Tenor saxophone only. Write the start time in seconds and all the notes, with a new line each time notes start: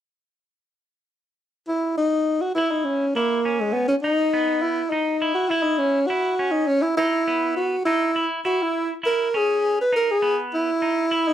1.68 E4
1.98 D#4
2.41 F#4
2.55 E4
2.71 D#4
2.85 C#4
3.16 A#3
3.60 G#3
3.73 B3
3.88 C#4
4.03 D#4
4.62 E4
4.90 D#4
5.34 F#4
5.49 E4
5.63 D#4
5.79 C#4
6.07 F#4
6.51 D#4
6.67 C#4
6.82 E4
6.97 E4
7.57 F#4
7.85 E4
8.46 F#4
8.62 E4
9.06 A#4
9.37 G#4
9.81 B4
9.96 A#4
10.11 G#4
10.54 E4
11.28 D#4